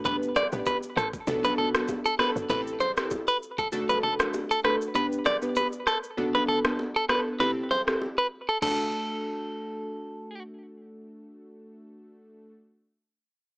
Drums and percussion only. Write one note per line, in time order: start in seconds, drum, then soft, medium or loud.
0.05 kick loud
0.05 low conga medium
0.05 shaker medium
0.23 shaker soft
0.36 cross-stick medium
0.36 low bongo medium
0.36 shaker soft
0.52 shaker soft
0.66 kick medium
0.66 high bongo medium
0.66 shaker medium
0.83 shaker medium
0.97 cross-stick medium
0.97 shaker soft
1.13 kick loud
1.13 shaker soft
1.27 kick loud
1.27 low conga medium
1.27 shaker medium
1.44 low bongo medium
1.44 shaker medium
1.58 low conga medium
1.75 cross-stick loud
1.75 low bongo medium
1.75 shaker medium
1.88 kick medium
1.88 high bongo medium
1.88 shaker medium
2.06 shaker medium
2.19 cross-stick medium
2.19 high bongo medium
2.36 shaker medium
2.50 kick loud
2.50 low conga medium
2.50 shaker medium
2.67 shaker soft
2.80 low bongo medium
2.80 shaker soft
2.97 cross-stick medium
2.97 shaker medium
3.11 kick medium
3.11 high bongo medium
3.11 shaker medium
3.28 shaker medium
3.43 shaker soft
3.58 kick medium
3.58 shaker soft
3.72 low conga medium
3.72 shaker medium
3.89 low bongo medium
3.89 shaker medium
4.03 low conga medium
4.19 cross-stick loud
4.19 low bongo medium
4.19 shaker medium
4.34 high bongo medium
4.34 shaker medium
4.51 shaker medium
4.64 cross-stick medium
4.64 high bongo medium
4.82 shaker medium
4.95 low conga medium
4.95 shaker medium
5.12 shaker soft
5.26 cross-stick medium
5.26 low bongo medium
5.26 shaker soft
5.42 shaker soft
5.56 high bongo medium
5.56 shaker medium
5.73 shaker medium
5.87 cross-stick medium
5.87 shaker soft
6.04 shaker soft
6.18 low conga medium
6.35 low bongo medium
6.48 low conga medium
6.64 cross-stick loud
6.64 high bongo soft
6.64 low bongo medium
6.79 high bongo medium
7.09 cross-stick loud
7.09 high bongo medium
7.40 low conga medium
7.71 low bongo medium
7.88 cross-stick medium
8.02 high bongo medium
8.62 kick loud
8.62 crash medium
8.62 low conga medium